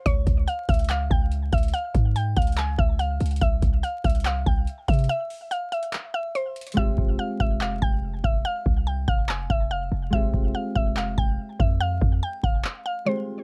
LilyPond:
<<
  \new Staff \with { instrumentName = "Synth pluck" } { \time 4/4 \key f \minor \tempo 4 = 143 des''4 f''8 e''8 f''8 g''4 e''8 | f''4 g''8 f''8 aes''8 e''8 f''4 | e''4 f''8 e''8 f''8 g''4 e''8 | e''4 f''8 e''8 r8 e''8 c''4 |
e''4 f''8 e''8 f''8 g''4 e''8 | f''4 g''8 f''8 aes''8 e''8 f''4 | e''4 f''8 e''8 f''8 g''4 e''8 | f''4 g''8 f''8 r8 f''8 c''4 | }
  \new Staff \with { instrumentName = "Harp" } { \time 4/4 \key f \minor r1 | r1 | r1 | r1 |
<aes c' f' g' aes'>1~ | <aes c' f' g' aes'>1 | <aes c' f' g' aes'>1~ | <aes c' f' g' aes'>2. <aes c' f' g' aes'>4 | }
  \new Staff \with { instrumentName = "808-style bass" } { \clef bass \time 4/4 \key f \minor des,8 des,8 r8 des,4 des,4 des,8 | r8 aes,4 des,4 des,4 des,8 | c,8 c,8 r8 c,4 c,8 r8 c8 | r1 |
f,,8 f,,8 r8 f,,4 f,,4 f,,8 | r8 c,4 f,,4 f,,4 f,,8 | f,,8 f,,8 r8 f,,4 f,,8 r8 f,8~ | f,8 f,8 r8 f,,8 r2 | }
  \new DrumStaff \with { instrumentName = "Drums" } \drummode { \time 4/4 <hh bd>8 <hh bd>8 hh8 <hh bd>32 hh32 hh32 hh32 <hc hh>8 bd8 hh8 <hh bd>32 hh32 hh32 hh32 | hh8 <hh bd>8 hh8 <hh bd>32 hh32 hh32 hh32 <hc hh>8 bd8 hh8 hh32 hh32 hh32 hh32 | <hh bd>8 <hh bd>8 hh8 <hh bd>32 hh32 hh32 hh32 <hc hh>8 bd8 hh8 <hh bd>32 hh32 hh32 hh32 | hh8 hho8 hh8 hh16 hh16 <hc hh>4 hh8 hh32 hh32 hh32 hh32 |
bd8 bd8 r8 bd8 hc8 bd8 r8 bd8 | r8 bd8 r8 bd8 hc8 bd8 r4 | bd8 bd8 r8 bd8 hc8 bd8 r8 bd8 | r8 bd8 r8 bd8 hc4 r4 | }
>>